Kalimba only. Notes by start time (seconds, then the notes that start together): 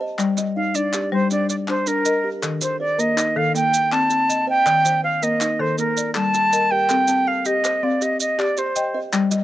0.01 C5 D#5
0.19 D5
0.38 G3
0.57 D#4
0.75 D5
0.94 G4
1.13 C5
1.31 D4
1.69 A5
1.87 D4
2.24 G4 A#4
2.42 A4
2.61 D#3
2.80 C5
2.98 A#4
3.17 D#4
3.36 A4
3.55 A#3
3.92 D5
4.10 C4
4.47 C5 D#5
4.66 D5
4.85 D#3
5.04 C5
5.23 A#4
5.41 D#4
5.60 A5
5.78 A#3
6.15 A4
6.34 G3
6.72 G4 A#4
6.90 A4
7.09 C4
7.27 A5
7.65 C5
7.84 F5
8.02 G4
8.39 D5
8.58 G4
8.94 C5 D#5
9.13 D5
9.31 G3